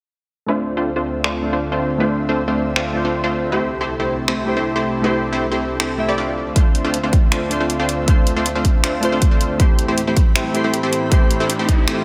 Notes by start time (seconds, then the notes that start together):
0.46 D2 D3 A3 C4 D4 F4 C5 E5
0.50 C5
0.77 A3 C4 D4 F4 C5
0.96 A3 C4 D4 F4 C5
1.24 A3 C4 D4 F4 C5, finger snap
1.41 A3 D4 F4 C5
1.53 A3 C4 D4 F4 C5
1.72 A3 C4 D4 F4 C5
1.98 A3 C4 D4 F4 C5
2.29 A3 C4 D4 F4 C5
2.48 A3 C4 D4 F4 C5
2.76 A3 C4 D4 F4 C5, finger snap
2.93 A3 D4 F4
2.97 C5
3.05 A3 C4 D4 F4 C5
3.24 A3 C4 D4 F4 C5
3.50 C2 C3 A3 C4 D4 E4 G4 A4 C5
3.54 C5
3.81 A3 C4 E4 G4 C5
4.00 A3 C4 E4 G4 C5
4.28 A3 C4 E4 G4 C5, finger snap
4.45 A3 E4 G4
4.49 C5
4.57 A3 C4 E4 G4 C5
4.76 A3 C4 E4 G4 C5
5.02 A3 C4 E4 G4 C5
5.06 C5
5.32 A3 C4 E4 G4 C5
5.52 A3 C4 E4 G4 C5
5.80 A3 C4 E4 G4 C5, finger snap
5.98 A3 E4 G4 E5
6.08 A3 C4 E4 G4 D5
6.18 A3 C4 D4 F4 D5
6.37 D2 D3 C4 F4 E5
6.54 A3 C4 D4 F4 C5, kick, closed hi-hat
6.75 closed hi-hat
6.84 A3 C4 D4 F4 C5
6.94 closed hi-hat
7.03 A3 C4 D4 F4 C5
7.13 kick, closed hi-hat
7.32 A3 C4 D4 F4 C5, finger snap, closed hi-hat
7.49 A3 D4 F4, closed hi-hat
7.53 C5
7.60 A3 C4 D4 F4 C5
7.70 closed hi-hat
7.79 A3 C4 D4 F4 C5
7.89 closed hi-hat
8.06 A3 C4 D4 F4 C5, kick, closed hi-hat
8.10 C5
8.27 closed hi-hat
8.36 A3 C4 D4 F4 C5
8.46 closed hi-hat
8.55 A3 C4 D4 F4 C5
8.65 kick, closed hi-hat
8.84 A3 C4 D4 F4 C5, finger snap, closed hi-hat
9.01 A3 D4 F4, closed hi-hat
9.05 C5
9.12 A3 C4 D4 F4 C5
9.22 kick, closed hi-hat
9.31 A3 C4 D4 F4 C5
9.41 closed hi-hat
9.58 A2 E3 A3 C4 E4 G4 C5 B5, kick, closed hi-hat, riser
9.79 closed hi-hat
9.88 A3 C4 E4 G4 C5
9.98 closed hi-hat
10.07 A3 C4 E4 G4 C5
10.17 kick, closed hi-hat
10.36 A3 C4 E4 G4 C5, finger snap, closed hi-hat
10.53 A3 E4 G4 C5, closed hi-hat
10.64 A3 C4 E4 G4 C5
10.74 closed hi-hat
10.83 A3 C4 E4 G4 C5
10.93 closed hi-hat
11.10 A3 C4 E4 G4 C5, kick, closed hi-hat
11.31 closed hi-hat
11.40 A3 C4 E4 G4 C5
11.50 closed hi-hat
11.59 A3 C4 E4 G4 C5
11.69 kick, closed hi-hat
11.88 A3 C4 E4 G4 C5, finger snap, closed hi-hat